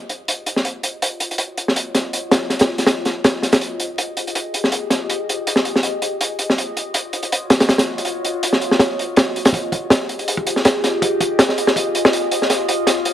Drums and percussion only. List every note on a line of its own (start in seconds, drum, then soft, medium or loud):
0.09 closed hi-hat medium
0.28 closed hi-hat medium
0.46 closed hi-hat medium
0.56 snare soft
0.65 closed hi-hat medium
0.83 closed hi-hat medium
1.02 closed hi-hat medium
1.20 closed hi-hat medium
1.31 closed hi-hat soft
1.38 closed hi-hat medium
1.58 closed hi-hat medium
1.68 snare soft
1.76 closed hi-hat medium
1.95 snare soft
1.95 closed hi-hat medium
2.13 closed hi-hat medium
2.31 snare medium
2.31 closed hi-hat medium
2.50 snare soft
2.50 closed hi-hat medium
2.59 snare medium
2.59 closed hi-hat medium
2.78 snare soft
2.78 closed hi-hat medium
2.87 snare medium
2.87 closed hi-hat medium
3.05 snare soft
3.05 closed hi-hat medium
3.24 snare loud
3.24 closed hi-hat medium
3.43 snare soft
3.43 closed hi-hat medium
3.52 snare loud
3.52 closed hi-hat medium
3.61 closed hi-hat medium
3.80 closed hi-hat medium
3.98 closed hi-hat medium
4.17 closed hi-hat medium
4.27 closed hi-hat soft
4.35 closed hi-hat medium
4.54 closed hi-hat medium
4.64 snare soft
4.72 closed hi-hat medium
4.90 snare soft
4.90 closed hi-hat medium
5.10 closed hi-hat medium
5.29 closed hi-hat medium
5.47 closed hi-hat medium
5.56 snare medium
5.65 closed hi-hat medium
5.76 snare soft
5.83 closed hi-hat medium
6.02 closed hi-hat medium
6.21 closed hi-hat medium
6.39 closed hi-hat medium
6.50 snare soft
6.58 closed hi-hat medium
6.77 closed hi-hat medium
6.94 closed hi-hat medium
7.13 closed hi-hat medium
7.23 closed hi-hat soft
7.32 closed hi-hat medium
7.50 snare medium
7.50 closed hi-hat medium
7.60 snare loud
7.60 closed hi-hat medium
7.69 snare medium
7.69 closed hi-hat medium
7.78 snare medium
7.78 closed hi-hat medium
7.98 closed hi-hat medium
8.05 closed hi-hat medium
8.25 closed hi-hat medium
8.43 closed hi-hat medium
8.53 snare soft
8.62 closed hi-hat medium
8.71 snare medium
8.79 snare loud
8.79 closed hi-hat medium
8.99 closed hi-hat medium
9.16 snare loud
9.16 closed hi-hat medium
9.36 closed hi-hat medium
9.45 snare medium
9.45 closed hi-hat medium
9.54 kick loud
9.54 closed hi-hat medium
9.72 kick medium
9.72 closed hi-hat medium
9.90 snare loud
9.90 closed hi-hat medium
10.09 closed hi-hat medium
10.19 closed hi-hat soft
10.28 closed hi-hat medium
10.37 kick medium
10.47 closed hi-hat medium
10.56 snare soft
10.65 snare loud
10.65 closed hi-hat medium
10.84 snare soft
10.84 closed hi-hat medium
11.02 kick medium
11.02 closed hi-hat medium
11.20 kick loud
11.20 closed hi-hat medium
11.39 snare loud
11.39 closed hi-hat medium
11.49 snare medium
11.58 closed hi-hat medium
11.67 snare medium
11.76 kick loud
11.76 closed hi-hat medium
11.95 closed hi-hat medium
12.05 snare loud
12.13 closed hi-hat medium
12.31 closed hi-hat medium
12.42 snare soft
12.50 snare soft
12.50 closed hi-hat medium
12.69 closed hi-hat medium
12.87 snare medium
12.87 closed hi-hat medium
13.05 closed hi-hat medium